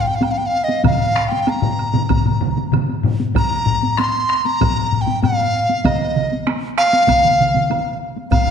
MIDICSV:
0, 0, Header, 1, 4, 480
1, 0, Start_track
1, 0, Tempo, 628272
1, 646, Time_signature, 4, 2, 24, 8
1, 3521, Tempo, 617920
1, 6548, End_track
2, 0, Start_track
2, 0, Title_t, "Dizi"
2, 0, Program_c, 0, 73
2, 5, Note_on_c, 0, 77, 70
2, 59, Note_on_c, 0, 79, 69
2, 70, Note_off_c, 0, 77, 0
2, 116, Note_on_c, 0, 77, 71
2, 127, Note_off_c, 0, 79, 0
2, 179, Note_on_c, 0, 79, 77
2, 191, Note_off_c, 0, 77, 0
2, 239, Note_on_c, 0, 77, 80
2, 251, Note_off_c, 0, 79, 0
2, 289, Note_on_c, 0, 79, 72
2, 300, Note_off_c, 0, 77, 0
2, 354, Note_on_c, 0, 77, 91
2, 365, Note_off_c, 0, 79, 0
2, 489, Note_on_c, 0, 75, 77
2, 501, Note_off_c, 0, 77, 0
2, 648, Note_off_c, 0, 75, 0
2, 659, Note_on_c, 0, 77, 88
2, 982, Note_on_c, 0, 79, 82
2, 993, Note_off_c, 0, 77, 0
2, 1140, Note_on_c, 0, 82, 76
2, 1152, Note_off_c, 0, 79, 0
2, 2094, Note_off_c, 0, 82, 0
2, 2580, Note_on_c, 0, 82, 99
2, 3045, Note_on_c, 0, 84, 89
2, 3057, Note_off_c, 0, 82, 0
2, 3402, Note_on_c, 0, 82, 88
2, 3413, Note_off_c, 0, 84, 0
2, 3835, Note_on_c, 0, 79, 77
2, 3847, Note_off_c, 0, 82, 0
2, 4000, Note_off_c, 0, 79, 0
2, 4005, Note_on_c, 0, 77, 86
2, 4484, Note_on_c, 0, 75, 72
2, 4496, Note_off_c, 0, 77, 0
2, 4966, Note_off_c, 0, 75, 0
2, 5206, Note_on_c, 0, 77, 115
2, 6131, Note_off_c, 0, 77, 0
2, 6395, Note_on_c, 0, 77, 96
2, 6548, Note_off_c, 0, 77, 0
2, 6548, End_track
3, 0, Start_track
3, 0, Title_t, "Taiko and cinematic ensemble drums"
3, 159, Note_on_c, 9, 48, 67
3, 235, Note_off_c, 9, 48, 0
3, 523, Note_on_c, 9, 48, 55
3, 599, Note_off_c, 9, 48, 0
3, 639, Note_on_c, 9, 41, 79
3, 640, Note_on_c, 9, 48, 69
3, 643, Note_on_c, 9, 45, 101
3, 648, Note_on_c, 9, 47, 99
3, 716, Note_off_c, 9, 41, 0
3, 717, Note_off_c, 9, 48, 0
3, 719, Note_off_c, 9, 45, 0
3, 725, Note_off_c, 9, 47, 0
3, 885, Note_on_c, 9, 37, 70
3, 887, Note_off_c, 9, 37, 0
3, 887, Note_on_c, 9, 37, 64
3, 964, Note_off_c, 9, 37, 0
3, 1005, Note_on_c, 9, 48, 52
3, 1082, Note_off_c, 9, 48, 0
3, 1124, Note_on_c, 9, 48, 67
3, 1200, Note_off_c, 9, 48, 0
3, 1239, Note_on_c, 9, 45, 90
3, 1244, Note_on_c, 9, 47, 97
3, 1316, Note_off_c, 9, 45, 0
3, 1321, Note_off_c, 9, 47, 0
3, 1480, Note_on_c, 9, 48, 52
3, 1483, Note_on_c, 9, 45, 88
3, 1487, Note_on_c, 9, 47, 92
3, 1556, Note_off_c, 9, 48, 0
3, 1560, Note_off_c, 9, 45, 0
3, 1564, Note_off_c, 9, 47, 0
3, 1603, Note_on_c, 9, 45, 69
3, 1603, Note_on_c, 9, 48, 73
3, 1606, Note_on_c, 9, 41, 80
3, 1610, Note_on_c, 9, 47, 68
3, 1679, Note_off_c, 9, 48, 0
3, 1680, Note_off_c, 9, 45, 0
3, 1682, Note_off_c, 9, 41, 0
3, 1686, Note_off_c, 9, 47, 0
3, 1722, Note_on_c, 9, 45, 69
3, 1734, Note_on_c, 9, 47, 65
3, 1799, Note_off_c, 9, 45, 0
3, 1810, Note_off_c, 9, 47, 0
3, 1839, Note_on_c, 9, 45, 99
3, 1851, Note_on_c, 9, 47, 90
3, 1916, Note_off_c, 9, 45, 0
3, 1927, Note_off_c, 9, 47, 0
3, 1963, Note_on_c, 9, 48, 53
3, 2040, Note_off_c, 9, 48, 0
3, 2078, Note_on_c, 9, 45, 94
3, 2086, Note_on_c, 9, 48, 63
3, 2091, Note_on_c, 9, 47, 90
3, 2154, Note_off_c, 9, 45, 0
3, 2162, Note_off_c, 9, 48, 0
3, 2167, Note_off_c, 9, 47, 0
3, 2202, Note_on_c, 9, 48, 47
3, 2279, Note_off_c, 9, 48, 0
3, 2317, Note_on_c, 9, 45, 91
3, 2335, Note_on_c, 9, 47, 98
3, 2394, Note_off_c, 9, 45, 0
3, 2412, Note_off_c, 9, 47, 0
3, 2444, Note_on_c, 9, 48, 47
3, 2520, Note_off_c, 9, 48, 0
3, 2554, Note_on_c, 9, 45, 70
3, 2562, Note_on_c, 9, 41, 98
3, 2563, Note_on_c, 9, 48, 65
3, 2630, Note_off_c, 9, 45, 0
3, 2638, Note_off_c, 9, 41, 0
3, 2639, Note_off_c, 9, 48, 0
3, 2678, Note_on_c, 9, 45, 71
3, 2755, Note_off_c, 9, 45, 0
3, 2802, Note_on_c, 9, 45, 89
3, 2878, Note_off_c, 9, 45, 0
3, 2923, Note_on_c, 9, 48, 51
3, 2999, Note_off_c, 9, 48, 0
3, 3036, Note_on_c, 9, 37, 72
3, 3044, Note_on_c, 9, 48, 64
3, 3112, Note_off_c, 9, 37, 0
3, 3120, Note_off_c, 9, 48, 0
3, 3278, Note_on_c, 9, 37, 72
3, 3355, Note_off_c, 9, 37, 0
3, 3402, Note_on_c, 9, 48, 49
3, 3478, Note_off_c, 9, 48, 0
3, 3521, Note_on_c, 9, 45, 65
3, 3522, Note_on_c, 9, 48, 75
3, 3526, Note_on_c, 9, 41, 95
3, 3599, Note_off_c, 9, 45, 0
3, 3600, Note_off_c, 9, 48, 0
3, 3604, Note_off_c, 9, 41, 0
3, 3642, Note_on_c, 9, 45, 63
3, 3719, Note_off_c, 9, 45, 0
3, 3766, Note_on_c, 9, 45, 70
3, 3843, Note_off_c, 9, 45, 0
3, 3882, Note_on_c, 9, 45, 60
3, 3885, Note_on_c, 9, 48, 56
3, 3959, Note_off_c, 9, 45, 0
3, 3963, Note_off_c, 9, 48, 0
3, 4000, Note_on_c, 9, 48, 65
3, 4006, Note_on_c, 9, 45, 93
3, 4078, Note_off_c, 9, 48, 0
3, 4083, Note_off_c, 9, 45, 0
3, 4364, Note_on_c, 9, 48, 51
3, 4442, Note_off_c, 9, 48, 0
3, 4481, Note_on_c, 9, 41, 93
3, 4483, Note_on_c, 9, 48, 72
3, 4485, Note_on_c, 9, 47, 63
3, 4558, Note_off_c, 9, 41, 0
3, 4561, Note_off_c, 9, 48, 0
3, 4563, Note_off_c, 9, 47, 0
3, 4614, Note_on_c, 9, 47, 66
3, 4691, Note_off_c, 9, 47, 0
3, 4727, Note_on_c, 9, 47, 77
3, 4804, Note_off_c, 9, 47, 0
3, 4849, Note_on_c, 9, 48, 49
3, 4926, Note_off_c, 9, 48, 0
3, 4967, Note_on_c, 9, 37, 75
3, 4968, Note_on_c, 9, 48, 64
3, 5045, Note_off_c, 9, 37, 0
3, 5046, Note_off_c, 9, 48, 0
3, 5208, Note_on_c, 9, 37, 79
3, 5286, Note_off_c, 9, 37, 0
3, 5326, Note_on_c, 9, 48, 51
3, 5404, Note_off_c, 9, 48, 0
3, 5441, Note_on_c, 9, 41, 88
3, 5444, Note_on_c, 9, 48, 67
3, 5448, Note_on_c, 9, 47, 66
3, 5518, Note_off_c, 9, 41, 0
3, 5522, Note_off_c, 9, 48, 0
3, 5526, Note_off_c, 9, 47, 0
3, 5570, Note_on_c, 9, 47, 68
3, 5647, Note_off_c, 9, 47, 0
3, 5692, Note_on_c, 9, 47, 69
3, 5769, Note_off_c, 9, 47, 0
3, 5801, Note_on_c, 9, 48, 51
3, 5815, Note_on_c, 9, 47, 67
3, 5878, Note_off_c, 9, 48, 0
3, 5893, Note_off_c, 9, 47, 0
3, 5923, Note_on_c, 9, 48, 58
3, 5927, Note_on_c, 9, 47, 89
3, 6001, Note_off_c, 9, 48, 0
3, 6005, Note_off_c, 9, 47, 0
3, 6283, Note_on_c, 9, 48, 41
3, 6360, Note_off_c, 9, 48, 0
3, 6400, Note_on_c, 9, 41, 90
3, 6403, Note_on_c, 9, 45, 71
3, 6404, Note_on_c, 9, 48, 60
3, 6478, Note_off_c, 9, 41, 0
3, 6481, Note_off_c, 9, 45, 0
3, 6482, Note_off_c, 9, 48, 0
3, 6520, Note_on_c, 9, 45, 75
3, 6548, Note_off_c, 9, 45, 0
3, 6548, End_track
4, 0, Start_track
4, 0, Title_t, "Drums"
4, 172, Note_on_c, 9, 76, 45
4, 249, Note_off_c, 9, 76, 0
4, 646, Note_on_c, 9, 76, 54
4, 722, Note_off_c, 9, 76, 0
4, 1122, Note_on_c, 9, 76, 42
4, 1199, Note_off_c, 9, 76, 0
4, 1369, Note_on_c, 9, 76, 37
4, 1445, Note_off_c, 9, 76, 0
4, 1599, Note_on_c, 9, 76, 52
4, 1675, Note_off_c, 9, 76, 0
4, 2090, Note_on_c, 9, 76, 46
4, 2166, Note_off_c, 9, 76, 0
4, 2568, Note_on_c, 9, 76, 59
4, 2644, Note_off_c, 9, 76, 0
4, 3052, Note_on_c, 9, 76, 47
4, 3128, Note_off_c, 9, 76, 0
4, 3526, Note_on_c, 9, 76, 55
4, 3604, Note_off_c, 9, 76, 0
4, 4009, Note_on_c, 9, 76, 44
4, 4086, Note_off_c, 9, 76, 0
4, 4489, Note_on_c, 9, 76, 53
4, 4567, Note_off_c, 9, 76, 0
4, 4977, Note_on_c, 9, 76, 44
4, 5054, Note_off_c, 9, 76, 0
4, 5212, Note_on_c, 9, 76, 41
4, 5290, Note_off_c, 9, 76, 0
4, 5448, Note_on_c, 9, 76, 50
4, 5526, Note_off_c, 9, 76, 0
4, 5928, Note_on_c, 9, 76, 42
4, 6006, Note_off_c, 9, 76, 0
4, 6403, Note_on_c, 9, 76, 51
4, 6481, Note_off_c, 9, 76, 0
4, 6548, End_track
0, 0, End_of_file